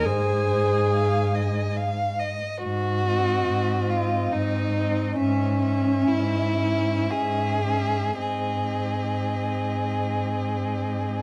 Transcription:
X:1
M:3/4
L:1/16
Q:1/4=69
K:Ab
V:1 name="Violin"
a8 z4 | z2 e4 e4 e2 | _f2 f4 f4 f2 | e12 |]
V:2 name="Violin"
c4 f2 e2 f2 e2 | _G6 F2 E4 | D4 _F4 A4 | A12 |]
V:3 name="Viola"
A8 z4 | z2 C4 C4 C2 | D2 D4 D4 D2 | C12 |]
V:4 name="Cello" clef=bass
A,,8- A,,3 z | A,,4 A,,4 A,,4 | A,,4 A,,4 A,,4 | A,,12 |]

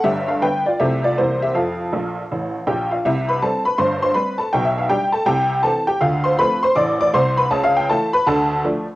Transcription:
X:1
M:4/4
L:1/8
Q:"Swing" 1/4=161
K:F
V:1 name="Honky-tonk piano"
[Ge] [Af] [=Bg] [Fd] [Ge] [Fd] [Ec] [Ge] | [Af]6 [Gg] [Ff] | [K:C] [Ee] [Bb] [Aa] [Bb] [cc'] [cc'] [Bb] [Aa] | (3g e f [Gg] [Aa] [Gg]2 [Aa] [Gg] |
[Ff] [cc'] [Bb] [cc'] [dd'] [dd'] [cc'] [Bb] | (3a f g [Aa] [Bb] [Aa]2 z2 |]
V:2 name="Honky-tonk piano" clef=bass
[G,,,G,,]2 [D,G,=B,]2 [C,,C,F,A,C]2 [C,,C,E,_B,C]2 | [F,,F,]2 [B,,,B,,]2 [A,,,A,,]2 [B,,,B,,]2 | [K:C] [C,,C,]2 [G,C]2 [G,,,G,,]2 [G,C]2 | [B,,,B,,]2 [G,D]2 [C,,C,]2 [E,C]2 |
[D,,D,]2 [F,A,C]2 [A,,,A,,]2 [C,,C,]2 | [^C,,^C,]2 [E,A,E]2 [D,,D,]2 [F,A,D]2 |]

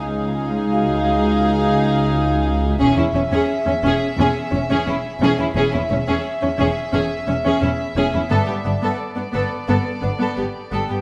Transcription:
X:1
M:4/4
L:1/16
Q:1/4=87
K:E
V:1 name="Vibraphone"
g4 [F^e]12 | z8 g8- | g4 z12 | [=d=d']12 z2 [=G=g]2 |]
V:2 name="Violin section"
^e16 | e16 | e16- | e4 =d12 |]
V:3 name="Violin section"
G16 | G E C G z C G z G z C G E z G E | G E C G z C G z G z C G E z G E | A =G =D A z D A z A z D A G z A G |]
V:4 name="Viola section"
D16 | C C C C z C C z C z C C C z C C | C C C C z C C z C z C C C z C C | B, B, B, B, z B, B, z B, z B, B, B, z B, B, |]
V:5 name="Cello section" clef=bass
C,,16 | E,, E,, E,, E,, z E,, E,, z E,, z E,, E,, E,, z E,, E,, | E,, E,, E,, E,, z E,, E,, z E,, z E,, E,, E,, z E,, E,, | =G,, G,, G,, G,, z G,, G,, z G,, z G,, G,, G,, z G,, G,, |]
V:6 name="Double bass section" clef=bass
C,,16 | E,,, z E,,, z3 E,,, z E,,, z E,,, z E,,, z E,,, z | E,,, z E,,, z3 E,,, z E,,, z E,,, z E,,, z E,,, z | =G,,, z G,,, z3 G,,, z G,,, z G,,, z G,,, z G,,, z |]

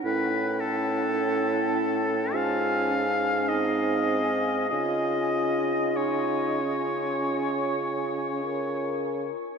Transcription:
X:1
M:4/4
L:1/16
Q:1/4=49
K:Db
V:1 name="Flute"
=g8 a4 a4 | a4 a8- a2 z2 |]
V:2 name="Oboe"
_c2 =A6 f4 e4 | e4 d8- d2 z2 |]
V:3 name="Clarinet"
=E8 F2 D2 _E3 z | F12- F2 z2 |]
V:4 name="French horn"
^C8 D4 =C4 | F4 E2 D6 B4 |]
V:5 name="Bassoon" clef=bass
=A,,8 _A,,8 | D,12- D,2 z2 |]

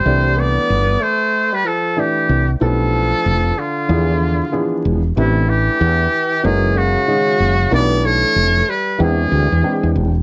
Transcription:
X:1
M:4/4
L:1/16
Q:"Swing 16ths" 1/4=94
K:C
V:1 name="Muted trumpet"
c2 d4 c3 B A2 G3 z | A6 F8 z2 | E2 G6 ^G2 ^F6 | d2 ^c4 B2 ^G6 z2 |]
V:2 name="Upright piano"
[E,A,DGd]6 z6 [E,A,DGd]2 z2 | [A,^CDEGB]6 z2 [E,F,B,D^G]4 [E,F,B,DG]2 z2 | [E,A,DGB]6 z2 [^G,^C^D^F^A]4 [^D,G,CF^G]2 z2 | [E,A,DGB]6 z2 [E,^G,^B,D=g]4 [E,^G,B,D=g]2 z2 |]
V:3 name="Tenor saxophone" clef=bass
G,2 B,4 A,3 G, F,2 E,3 z | F,6 D,8 z2 | C,2 E,6 E,2 ^C,6 | B,2 A,4 G,2 E,6 z2 |]
V:4 name="Fretless electric bass" clef=bass
C,,4 G,,,2 z8 C,,2 | B,,,4 F,,,2 z2 E,,4 z2 E,,,2 | A,,,4 E,,2 z2 ^F,,,4 z2 F,,,2 | B,,,4 F,,,2 z2 E,,2 D,, E,, z E,, E,,,2 |]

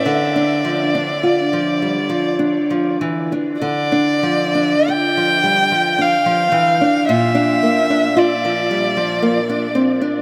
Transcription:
X:1
M:3/4
L:1/16
Q:1/4=54
K:Dm
V:1 name="Violin"
d8 z4 | d4 g4 f4 | e4 d6 z2 |]
V:2 name="Nylon-string guitar" clef=bass
D, D F, D F F, G, F, D F, E, D | D, D F, D F F, G, F, D F, E, D | B,, D B, D F F, G, F, B, D C D |]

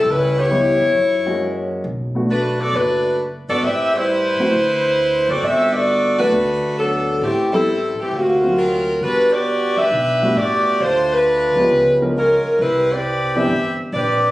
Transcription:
X:1
M:4/4
L:1/8
Q:"Swing" 1/4=134
K:G
V:1 name="Saxophone section"
[G,^CEB] [B,EG^c]6 z | z2 [A,DFB] [B,FAd] [A,DFB]2 z [B,FAd] | [CGBe] [G,EBc]6 [CFAd] | [CFAe] [B,FAd]2 [A,DFB]3 [F,B,DA]2 |
[E,A,CG] [G,CEA]2 [E,A,CG] [C,^A,^EF]2 [F,CE^A]2 | [G,DFB] [B,FGd]2 [DGBe]3 [B,FGd]2 | [A,D=Fc] [A,DFB]4- [A,DFB] [^G,^C^E_B]2 | [G,CEB] [CGBd]2 [CGBe]2 z [CGBd]2 |]
V:2 name="Grand piano"
z2 [G,B,_E=E] z2 [_A,^A,^CF]3 | z [A,B,DF] z6 | z3 [A,CEF] z4 | z3 [A,B,DF] z4 |
z [G,B,CE] z3 [F,^A,C^E] z2 | z4 z [G,A,B,DF] z2 | z3 [=F,_A,B,^CG]2 [^E,^G,B,C_B] z2 | z3 [E,B,CDG] z4 |]
V:3 name="Upright bass" clef=bass
^C,,3 E,, F,,4 | B,,,4 F,,,3 G,,, | A,,,3 z D,,3 F,,, | G,,,4 D,,4 |
A,,,3 z D,,4 | G,,,3 D,, B,,,2 A,,2 | D,,3 D,, ^C,,3 z | C,,4 G,,,2 _B,,,2 |]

